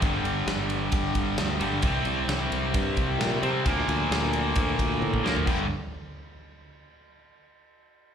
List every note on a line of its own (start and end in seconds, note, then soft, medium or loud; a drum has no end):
0.02 0.23 G1 medium
0.02 1.60 G2 medium
0.02 1.60 D3 medium
0.02 1.58 G3 medium
0.02 kick loud
0.02 ride medium
0.23 0.46 G1 medium
0.23 ride medium
0.46 0.89 G1 medium
0.46 snare loud
0.46 ride medium
0.70 ride medium
0.92 1.14 G1 medium
0.92 kick loud
0.92 ride loud
1.15 1.37 G1 medium
1.15 kick medium
1.15 ride medium
1.38 1.60 D2 loud
1.38 snare loud
1.38 ride loud
1.59 1.82 G1 medium
1.59 1.84 G2 medium
1.59 1.82 D3 medium
1.59 1.82 G3 medium
1.59 ride medium
1.82 2.04 C2 medium
1.82 3.41 C3 medium
1.82 3.42 G3 loud
1.82 3.41 C4 loud
1.82 kick loud
1.82 ride loud
2.05 2.27 C2 medium
2.05 ride medium
2.28 2.50 C2 medium
2.28 snare loud
2.28 ride medium
2.52 2.73 C2 medium
2.52 ride medium
2.74 2.96 G2 loud
2.74 kick loud
2.74 ride loud
2.97 3.18 C2 medium
2.97 kick medium
2.97 ride medium
3.18 3.40 A#2 medium
3.18 snare loud
3.18 ride medium
3.43 3.64 C3 medium
3.43 3.63 C3 medium
3.43 3.66 G3 medium
3.43 3.64 C4 medium
3.43 ride medium
3.64 3.87 D2 medium
3.64 5.22 A#2 medium
3.64 5.24 F3 medium
3.64 5.23 A#3 medium
3.64 kick loud
3.64 ride loud
3.88 4.09 D2 medium
3.88 ride medium
4.10 4.53 D2 medium
4.10 snare loud
4.10 ride medium
4.23 snare soft
4.33 ride medium
4.55 4.78 D2 loud
4.55 kick loud
4.55 ride loud
4.79 5.00 D2 medium
4.79 kick medium
4.79 ride medium
5.02 5.23 A2 medium
5.02 high tom medium
5.14 kick medium
5.23 5.45 D2 medium
5.23 5.46 A#2 medium
5.23 5.46 F3 medium
5.23 5.46 A#3 medium
5.23 snare medium
5.36 floor tom medium
5.45 5.68 G1 medium
5.45 5.65 G2 loud
5.45 5.65 D3 loud
5.45 5.65 G3 loud
5.45 kick loud
5.45 crash medium